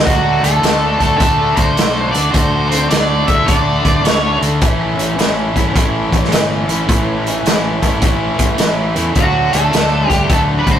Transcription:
0.05 fingered electric bass D2, overdriven electric guitar D3 A3 D4 F#4 A4, lead electric guitar F#3 F#4, kick, closed hi-hat
0.43 fingered electric bass D2, lead electric guitar A3 A4, closed hi-hat
0.63 fingered electric bass D2, overdriven electric guitar D3 A3 D4 F#4 A4, snare, closed hi-hat
0.99 fingered electric bass D2, overdriven electric guitar D3 A3 D4 F#4 A4, kick, closed hi-hat
1.18 fingered electric bass D2, overdriven electric guitar D3 A3 D4 F#4, lead electric guitar A3 A4, kick, closed hi-hat
1.22 overdriven electric guitar A4
1.56 fingered electric bass D2, lead electric guitar F#4 C5, kick, closed hi-hat
1.77 fingered electric bass B1, overdriven electric guitar D3 A3 D4 F#4 A4, snare, closed hi-hat
2.11 fingered electric bass D2, overdriven electric guitar D3 A3 D4 F#4, lead electric guitar D5, closed hi-hat
2.16 lead electric guitar D4, overdriven electric guitar A4
2.31 fingered electric bass D2, overdriven electric guitar D3 A3 D4 F#4 A4, lead electric guitar F#4 C5, kick, closed hi-hat
2.69 lead electric guitar C5, closed hi-hat
2.74 lead electric guitar C4
2.90 fingered electric bass D2, overdriven electric guitar D3 A3 D4 F#4 A4, lead electric guitar D4 D5, snare, closed hi-hat
3.27 fingered electric bass D2, overdriven electric guitar D3 A3 D4 F#4 A4, lead electric guitar E5, kick, closed hi-hat
3.32 lead electric guitar E4
3.47 fingered electric bass D2, overdriven electric guitar D3 A3 D4 F#4 A4, lead electric guitar D4 D5, kick, closed hi-hat
3.85 fingered electric bass D2, kick, closed hi-hat
4.03 fingered electric bass D2, overdriven electric guitar D3 A3 D4 F#4 A4, closed hi-hat
4.07 lead electric guitar C#4 C#5, snare
4.40 fingered electric bass D2, overdriven electric guitar D3 A3 D4 F#4 A4, closed hi-hat
4.61 fingered electric bass A1, overdriven electric guitar A2 E3 A3 C#4 E4, kick, closed hi-hat
4.97 fingered electric bass A1, closed hi-hat
5.18 fingered electric bass A1, overdriven electric guitar A2 E3 A3 C#4 E4, snare, closed hi-hat
5.56 fingered electric bass A1, overdriven electric guitar A2 E3 A3 C#4 E4, kick, closed hi-hat
5.75 fingered electric bass A1, overdriven electric guitar A2 E3 A3 C#4 E4, kick, closed hi-hat
6.12 fingered electric bass A1, kick, closed hi-hat
6.24 snare
6.31 fingered electric bass G1, overdriven electric guitar A2 E3 A3 C#4 E4, snare, closed hi-hat
6.69 fingered electric bass A1, overdriven electric guitar A2 E3 A3 C#4 E4, closed hi-hat
6.87 fingered electric bass A1, overdriven electric guitar A2 E3 A3 C#4 E4, kick, closed hi-hat
7.27 closed hi-hat
7.46 fingered electric bass A1, overdriven electric guitar A2 E3 A3 C#4 E4, snare, closed hi-hat
7.82 fingered electric bass A1, overdriven electric guitar A2 E3 A3 C#4 E4, kick, closed hi-hat
8.02 fingered electric bass A1, overdriven electric guitar A2 E3 A3 C#4 E4, kick, closed hi-hat
8.39 fingered electric bass A1, kick, closed hi-hat
8.58 fingered electric bass A1, overdriven electric guitar A2 E3 A3 C#4 E4, snare, closed hi-hat
8.95 fingered electric bass E2, overdriven electric guitar A2 E3 A3 C#4 E4, closed hi-hat
9.15 fingered electric bass D2, overdriven electric guitar D3 F#3 A3 D4, lead electric guitar F#3 F#4, kick, closed hi-hat
9.53 fingered electric bass D2, lead electric guitar A3 A4, closed hi-hat
9.73 fingered electric bass D2, overdriven electric guitar D3 F#3 A3 D4, snare, closed hi-hat
10.05 overdriven electric guitar D3, lead electric guitar G3
10.10 fingered electric bass D2, overdriven electric guitar F#3 A3 D4, lead electric guitar G4, kick, closed hi-hat
10.30 fingered electric bass D2, overdriven electric guitar D3 F#3 A3 D4, lead electric guitar A3 A4, kick, closed hi-hat
10.58 lead electric guitar D4 B4
10.67 fingered electric bass D2, lead electric guitar F#4, kick, closed hi-hat
10.71 lead electric guitar C5

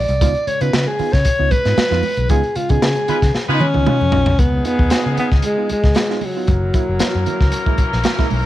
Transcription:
Already playing: alto saxophone D5
0.09 fingered electric bass C2, closed hi-hat
0.21 fingered electric bass C#2, reed electric piano B3 D#4 F4, kick, closed hi-hat, muted conga
0.35 closed hi-hat
0.47 reed electric piano C#3 G#3, alto saxophone C#5, muted fingered electric bass stroke, closed hi-hat
0.61 fingered electric bass C#3, reed electric piano B3 D#4 F4, alto saxophone B4, closed hi-hat
0.73 fingered electric bass C#3, snare, high conga
0.87 reed electric piano C#3 G#3, alto saxophone G#4
0.99 reed electric piano B3 D#4 F4, muted fingered electric bass stroke, open hi-hat, low conga
1.13 fingered electric bass C#3, alto saxophone C#5, kick, snare, closed hi-hat
1.25 kick, closed hi-hat
1.39 fingered electric bass C#2, reed electric piano B3 D#4 F4
1.51 reed electric piano C#3 G#3, alto saxophone B4, kick, closed hi-hat, muted conga
1.65 fingered electric bass G#2, reed electric piano B3 D#4 F4, snare, closed hi-hat
1.77 muted fingered electric bass stroke, snare, high conga
1.91 fingered electric bass F2, reed electric piano B3 D#4 F4, snare, closed hi-hat, high conga
2.03 open hi-hat, high conga
2.17 fingered electric bass B1, reed electric piano C#3 G#3, closed hi-hat
2.29 fingered electric bass C#2, reed electric piano B3 D#4 F4, alto saxophone G#4, kick, closed hi-hat, muted conga
2.43 closed hi-hat
2.55 reed electric piano C#3 G#3, alto saxophone F4, muted fingered electric bass stroke, closed hi-hat
2.69 fingered electric bass C#3, reed electric piano B3 D#4 F4, alto saxophone G#4, kick, closed hi-hat
2.82 fingered electric bass C#3, snare, high conga
2.95 reed electric piano C#3 G#3, closed hi-hat
3.08 horn section G#3 B3 F4 B4, reed electric piano B3 D#4 F4, muted fingered electric bass stroke, closed hi-hat, low conga
3.22 fingered electric bass C#3, kick, snare, closed hi-hat
3.35 muted fingered electric bass stroke, snare
3.49 fingered electric bass C#3, horn section G#3 B3 F4 B4, reed electric piano B3 D#4 F4
3.54 alto saxophone D#4
3.60 reed electric piano C#3 G#3, alto saxophone C#4, high tom, muted conga
3.74 fingered electric bass C#2, reed electric piano B3 D#4 F4, high tom
3.86 reed electric piano D#4 F4, mid tom, high conga
4.01 fingered electric bass F2, reed electric piano C#3 G#3, high conga
4.12 fingered electric bass A#1, reed electric piano D#4 F4, floor tom, high conga
4.26 fingered electric bass B1, floor tom
4.39 fingered electric bass C#2, reed electric piano C#3 G#3, horn section F3 G#3 D#4 G#4, alto saxophone B3, kick, closed hi-hat, muted conga
4.65 alto saxophone B3, reed electric piano D#4 F4, closed hi-hat
4.79 fingered electric bass D#2, kick
4.90 reed electric piano D#4 F4, snare, closed hi-hat, high conga
5.05 reed electric piano C#3 G#3, fingered electric bass C#3
5.17 alto saxophone B3, reed electric piano D#4 F4, closed hi-hat, low conga
5.31 fingered electric bass C#2, kick, snare
5.42 reed electric piano C#3 G#3, alto saxophone G#3, closed hi-hat, muted conga
5.58 reed electric piano B3 D#4 F4
5.69 alto saxophone G#3, muted fingered electric bass stroke, closed hi-hat, muted conga
5.84 fingered electric bass C#2, kick, snare
5.95 snare, closed hi-hat, high conga
6.10 reed electric piano B3 D#4 F4, snare
6.21 reed electric piano C#3 G#3, open hi-hat, high conga
6.25 alto saxophone F#3
6.36 reed electric piano B3 D#4 F4
6.47 fingered electric bass F#1, horn section E3 A#3 C#4 A#4, reed electric piano F#3, kick, closed hi-hat, muted conga
6.74 reed electric piano A#3 E4, kick, closed hi-hat
6.89 fingered electric bass F#1
6.99 reed electric piano A#3 E4, muted fingered electric bass stroke, snare, closed hi-hat, high conga
7.15 fingered electric bass F#2, reed electric piano F#3
7.26 reed electric piano A#3 E4, closed hi-hat, low conga
7.41 fingered electric bass C#2, kick, snare
7.52 reed electric piano F#3, closed hi-hat, muted conga
7.66 reed electric piano G#3 A#3 E4, kick
7.78 muted fingered electric bass stroke, kick, closed hi-hat, muted conga
7.93 fingered electric bass A#1, snare
8.04 snare, closed hi-hat, high conga
8.19 reed electric piano G#3 A#3 E4, kick, snare
8.30 fingered electric bass B1, reed electric piano F#3, open hi-hat, high conga

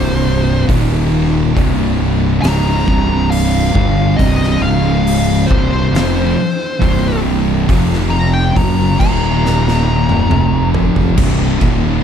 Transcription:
Already playing: fingered electric bass C1, distorted electric guitar C2 G2 C3, lead electric guitar C5
0.67 fingered electric bass D#1, distorted electric guitar D#2 A#2 D#3, kick, open hi-hat
1.55 fingered electric bass C1, distorted electric guitar C2 G2 C3, kick, open hi-hat
2.42 fingered electric bass C#1, distorted electric guitar C#2 G#2 C#3, lead electric guitar A#5, snare, open hi-hat
2.87 fingered electric bass C1, distorted electric guitar C2 G2 C3, kick
3.30 lead electric guitar F5, open hi-hat
3.75 fingered electric bass G1, distorted electric guitar G2 D3 G3, kick
4.17 fingered electric bass C1, distorted electric guitar C2 G2 C3, lead electric guitar D#5, kick, open hi-hat
4.43 snare
4.61 fingered electric bass C#1, distorted electric guitar C#2 G#2 C#3, lead electric guitar F5
5.07 open hi-hat
5.46 fingered electric bass C1, distorted electric guitar C2, lead electric guitar C5
5.51 distorted electric guitar G2 C3, kick
5.92 fingered electric bass F1, distorted electric guitar F2 C3 F3, snare, open hi-hat
6.82 fingered electric bass C1, distorted electric guitar C2 G2 C3, kick, open hi-hat
7.68 fingered electric bass F1, distorted electric guitar F2 C3 F3, kick, open hi-hat
7.93 snare
8.10 lead electric guitar A#5
8.34 lead electric guitar G5
8.56 fingered electric bass F#1, distorted electric guitar F#2 C#3 F#3, lead electric guitar A#5, kick, open hi-hat
8.98 fingered electric bass D#1, distorted electric guitar D#2 A#2 D#3, lead electric guitar A#5, kick, crash
9.46 snare
9.68 snare
10.09 high tom
10.29 fingered electric bass F1, distorted electric guitar F2 C3 F3, mid tom
10.74 floor tom
10.96 floor tom
11.17 fingered electric bass C1, distorted electric guitar C2 G2 C3, kick, crash
11.61 fingered electric bass D#1, distorted electric guitar D#2 A#2 D#3, kick, ride

